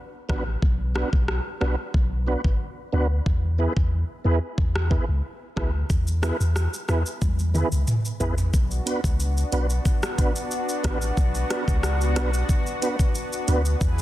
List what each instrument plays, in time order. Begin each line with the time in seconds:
0.29 sub bass A1, tonewheel organ B3 D4 F#4 B4, kick, cross-stick
0.62 sub bass B1, kick
0.95 tonewheel organ B3 D4 F#4 B4, cross-stick
1.13 sub bass B1, kick
1.28 cross-stick
1.61 sub bass B1, tonewheel organ B3 D4 F#4 B4, cross-stick
1.94 sub bass B1, kick
2.27 tonewheel organ B3 D4 F#4 B4
2.44 sub bass G#1, kick
2.93 sub bass D2, tonewheel organ B3 D4 F#4 B4
3.26 sub bass E2, kick
3.59 tonewheel organ B3 E4 G#4 B4
3.77 sub bass E2, kick
4.25 sub bass E2, tonewheel organ B3 E4 G#4 B4
4.58 sub bass E2, kick
4.76 cross-stick
4.90 tonewheel organ B3 E4 G#4 B4, kick
5.09 sub bass C#2
5.56 sub bass D2, tonewheel organ B3 E4 G#4 B4, kick, cross-stick
5.90 sub bass E2, kick, shaker
6.07 shaker
6.22 tonewheel organ B3 E4 G#4 B4, cross-stick, shaker
6.40 sub bass E2, shaker
6.56 cross-stick, shaker
6.74 shaker
6.88 sub bass E2, tonewheel organ B3 E4 G#4 B4, cross-stick, shaker
7.06 shaker
7.22 sub bass E2, kick, high tom, shaker
7.39 shaker
7.54 tonewheel organ B3 E4 G#4 B4, mid tom, shaker
7.72 sub bass C#2, shaker
7.88 mid tom, shaker
8.05 shaker
8.20 sub bass A1, tonewheel organ B3 E4 G#4 B4, floor tom, shaker
8.38 floor tom, shaker
8.54 sub bass B1, analog synth pad B3 D4 F#4, kick, shaker
8.71 shaker
8.86 tonewheel organ B3 D4 F#4 B4, closed hi-hat, shaker
9.04 sub bass C#2, kick, shaker
9.20 shaker
9.37 shaker
9.52 sub bass B1, tonewheel organ B3 D4 F#4 B4, closed hi-hat, shaker
9.70 shaker
9.85 kick, shaker
10.03 cross-stick, shaker
10.18 tonewheel organ B3 D4 F#4 B4, kick, closed hi-hat, shaker
10.36 shaker
10.51 shaker
10.69 shaker
10.84 sub bass A1, tonewheel organ B3 D4 F#4 B4, kick, cross-stick, closed hi-hat, shaker
11.02 shaker
11.17 sub bass B1, kick, shaker
11.35 shaker
11.50 tonewheel organ B3 D4 F#4 B4, cross-stick, closed hi-hat, shaker
11.68 sub bass C#2, kick, shaker
11.83 cross-stick, shaker
12.01 shaker
12.16 sub bass B1, tonewheel organ B3 D4 F#4 B4, cross-stick, closed hi-hat, shaker
12.34 shaker
12.49 kick, shaker
12.66 shaker
12.81 tonewheel organ B3 D4 F#4 B4, closed hi-hat, shaker
12.99 kick, shaker
13.15 shaker
13.33 shaker
13.47 sub bass D2, tonewheel organ B3 D4 F#4 B4, closed hi-hat, shaker
13.65 shaker
13.81 sub bass E2, analog synth pad E3 E4 G#4 B4, kick, shaker
13.98 shaker